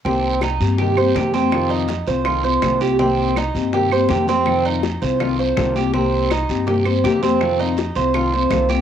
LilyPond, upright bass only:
\new Staff \with { instrumentName = "Upright bass" } { \clef bass \time 4/4 \key c \dorian \tempo 4 = 163 c,4. g,4. f,4~ | f,4. c,4. c,4~ | c,4. g,4. f,4~ | f,4. c,4. c,4~ |
c,4. g,4. f,4~ | f,4. c,4. c,4 | }